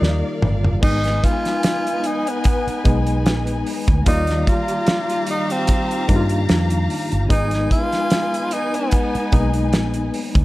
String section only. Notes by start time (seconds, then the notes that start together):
Already playing: A#4 D5 F5
0.82 D#4 B4 G#5
4.07 G4 F5 A#5
7.30 D#4 B4 G#5